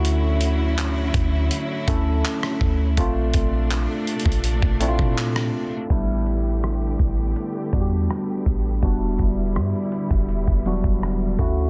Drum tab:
CC |------------------------------------------------|------------------------------------------------|x-----------------------------------------------|------------------------------------------------|
HH |x-----x-----x-----x-----x-----x-----x-----------|x-----x-----x-----x-x-x-x-----x-----x-----------|x-----x-----x-----x-----x-----x-----x-----------|x-----x-----x-----x-----x-----x-----x-----------|
CP |------------x-----------------------x-----------|------------x-----------------------x-----------|------------------------------------------------|------------------------------------------------|
SD |---------------------------------------r--------|---------------------------------------r--------|------------r-----------------------r-----------|------------r-----------------------r-----------|
BD |------------------o-----------o-----------o-----|o-----o--------------o-----o-----o--------------|o-----------------o-----------o-----------o-----|o-----o--------------o-----o-----o--------o-----|